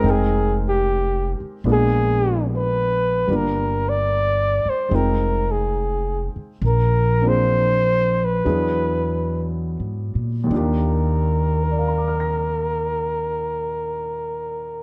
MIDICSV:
0, 0, Header, 1, 5, 480
1, 0, Start_track
1, 0, Key_signature, -3, "major"
1, 0, Tempo, 811908
1, 22, Time_signature, 4, 2, 24, 8
1, 2902, Tempo, 849858
1, 3862, Tempo, 898204
1, 4342, Tempo, 940439
1, 4822, Tempo, 998336
1, 5302, Tempo, 1084991
1, 7684, End_track
2, 0, Start_track
2, 0, Title_t, "Flugelhorn"
2, 0, Program_c, 0, 56
2, 0, Note_on_c, 0, 70, 83
2, 62, Note_on_c, 0, 68, 76
2, 71, Note_off_c, 0, 70, 0
2, 370, Note_off_c, 0, 68, 0
2, 404, Note_on_c, 0, 67, 72
2, 830, Note_off_c, 0, 67, 0
2, 1018, Note_on_c, 0, 68, 98
2, 1454, Note_off_c, 0, 68, 0
2, 1515, Note_on_c, 0, 71, 83
2, 1990, Note_on_c, 0, 70, 75
2, 1999, Note_off_c, 0, 71, 0
2, 2301, Note_on_c, 0, 74, 95
2, 2309, Note_off_c, 0, 70, 0
2, 2777, Note_on_c, 0, 72, 76
2, 2786, Note_off_c, 0, 74, 0
2, 2928, Note_on_c, 0, 70, 81
2, 2937, Note_off_c, 0, 72, 0
2, 3245, Note_on_c, 0, 68, 63
2, 3253, Note_off_c, 0, 70, 0
2, 3717, Note_off_c, 0, 68, 0
2, 3893, Note_on_c, 0, 70, 89
2, 4223, Note_on_c, 0, 72, 105
2, 4231, Note_off_c, 0, 70, 0
2, 4721, Note_on_c, 0, 71, 79
2, 4728, Note_off_c, 0, 72, 0
2, 5324, Note_off_c, 0, 71, 0
2, 5791, Note_on_c, 0, 70, 66
2, 7684, Note_off_c, 0, 70, 0
2, 7684, End_track
3, 0, Start_track
3, 0, Title_t, "Grand piano"
3, 0, Program_c, 1, 0
3, 0, Control_c, 1, 64, 127
3, 0, Note_on_c, 1, 56, 56
3, 2, Note_on_c, 1, 60, 52
3, 21, Note_on_c, 1, 63, 49
3, 29, Control_c, 1, 64, 0
3, 35, Note_on_c, 1, 79, 52
3, 50, Note_on_c, 1, 70, 58
3, 125, Control_c, 1, 64, 127
3, 957, Note_off_c, 1, 56, 0
3, 966, Note_off_c, 1, 60, 0
3, 975, Note_off_c, 1, 63, 0
3, 977, Note_on_c, 1, 62, 44
3, 978, Note_on_c, 1, 56, 48
3, 980, Note_on_c, 1, 59, 45
3, 982, Note_off_c, 1, 79, 0
3, 982, Control_c, 1, 64, 0
3, 982, Note_on_c, 1, 65, 45
3, 987, Note_on_c, 1, 58, 54
3, 989, Note_off_c, 1, 70, 0
3, 1097, Control_c, 1, 64, 127
3, 1930, Note_off_c, 1, 58, 0
3, 1933, Note_on_c, 1, 55, 47
3, 1938, Note_off_c, 1, 56, 0
3, 1938, Note_off_c, 1, 62, 0
3, 1939, Note_off_c, 1, 59, 0
3, 1939, Note_on_c, 1, 58, 37
3, 1940, Note_off_c, 1, 65, 0
3, 1945, Control_c, 1, 64, 0
3, 1950, Note_on_c, 1, 62, 43
3, 1952, Note_on_c, 1, 65, 42
3, 1962, Note_on_c, 1, 70, 46
3, 2037, Control_c, 1, 64, 127
3, 2890, Note_on_c, 1, 56, 46
3, 2898, Note_on_c, 1, 60, 47
3, 2899, Note_off_c, 1, 55, 0
3, 2902, Note_off_c, 1, 58, 0
3, 2907, Note_off_c, 1, 62, 0
3, 2907, Note_on_c, 1, 63, 46
3, 2908, Note_off_c, 1, 65, 0
3, 2909, Control_c, 1, 64, 0
3, 2913, Note_off_c, 1, 70, 0
3, 2916, Note_on_c, 1, 65, 42
3, 2922, Note_on_c, 1, 79, 51
3, 3021, Control_c, 1, 64, 127
3, 3856, Note_off_c, 1, 56, 0
3, 3859, Note_off_c, 1, 60, 0
3, 3864, Note_off_c, 1, 63, 0
3, 3868, Note_off_c, 1, 65, 0
3, 3868, Control_c, 1, 64, 0
3, 3871, Note_off_c, 1, 79, 0
3, 3948, Control_c, 1, 64, 127
3, 4185, Note_on_c, 1, 58, 46
3, 4187, Note_on_c, 1, 60, 43
3, 4196, Note_on_c, 1, 62, 46
3, 4202, Note_on_c, 1, 65, 44
3, 4212, Note_on_c, 1, 68, 49
3, 4816, Note_off_c, 1, 62, 0
3, 4819, Note_off_c, 1, 58, 0
3, 4820, Note_off_c, 1, 60, 0
3, 4821, Note_off_c, 1, 68, 0
3, 4822, Note_on_c, 1, 54, 50
3, 4823, Note_on_c, 1, 62, 45
3, 4826, Note_on_c, 1, 59, 45
3, 4827, Note_off_c, 1, 65, 0
3, 4827, Control_c, 1, 64, 0
3, 4829, Note_on_c, 1, 64, 43
3, 4829, Note_on_c, 1, 68, 50
3, 4920, Control_c, 1, 64, 127
3, 5740, Note_on_c, 1, 39, 50
3, 5754, Note_on_c, 1, 51, 50
3, 5763, Note_off_c, 1, 62, 0
3, 5770, Note_on_c, 1, 62, 47
3, 5773, Note_off_c, 1, 54, 0
3, 5775, Note_off_c, 1, 59, 0
3, 5776, Note_off_c, 1, 64, 0
3, 5776, Note_off_c, 1, 68, 0
3, 5779, Control_c, 1, 64, 0
3, 5783, Note_on_c, 1, 65, 51
3, 5796, Note_on_c, 1, 67, 57
3, 5862, Control_c, 1, 64, 127
3, 6270, Note_on_c, 1, 70, 38
3, 6305, Note_on_c, 1, 74, 35
3, 6339, Note_on_c, 1, 77, 35
3, 6381, Note_on_c, 1, 82, 34
3, 6422, Note_on_c, 1, 86, 32
3, 6467, Note_on_c, 1, 89, 31
3, 6521, Note_on_c, 1, 94, 28
3, 7684, Note_off_c, 1, 39, 0
3, 7684, Note_off_c, 1, 51, 0
3, 7684, Note_off_c, 1, 62, 0
3, 7684, Note_off_c, 1, 65, 0
3, 7684, Note_off_c, 1, 67, 0
3, 7684, Note_off_c, 1, 70, 0
3, 7684, Note_off_c, 1, 74, 0
3, 7684, Note_off_c, 1, 77, 0
3, 7684, Note_off_c, 1, 82, 0
3, 7684, Note_off_c, 1, 86, 0
3, 7684, Note_off_c, 1, 89, 0
3, 7684, Note_off_c, 1, 94, 0
3, 7684, End_track
4, 0, Start_track
4, 0, Title_t, "Upright bass"
4, 0, Program_c, 2, 32
4, 23, Note_on_c, 2, 29, 66
4, 804, Note_off_c, 2, 29, 0
4, 970, Note_on_c, 2, 34, 72
4, 1911, Note_off_c, 2, 34, 0
4, 1942, Note_on_c, 2, 31, 63
4, 2728, Note_off_c, 2, 31, 0
4, 2904, Note_on_c, 2, 29, 69
4, 3687, Note_off_c, 2, 29, 0
4, 3866, Note_on_c, 2, 34, 71
4, 4804, Note_off_c, 2, 34, 0
4, 4828, Note_on_c, 2, 40, 69
4, 5441, Note_off_c, 2, 40, 0
4, 5458, Note_on_c, 2, 44, 46
4, 5603, Note_off_c, 2, 44, 0
4, 5615, Note_on_c, 2, 46, 50
4, 5763, Note_off_c, 2, 46, 0
4, 5772, Note_on_c, 2, 39, 74
4, 7684, Note_off_c, 2, 39, 0
4, 7684, End_track
5, 0, Start_track
5, 0, Title_t, "Muted upright bass strokes"
5, 829, Note_on_c, 9, 29, 35
5, 888, Note_off_c, 9, 29, 0
5, 2752, Note_on_c, 9, 29, 36
5, 2811, Note_off_c, 9, 29, 0
5, 3721, Note_on_c, 9, 29, 33
5, 3778, Note_off_c, 9, 29, 0
5, 7684, End_track
0, 0, End_of_file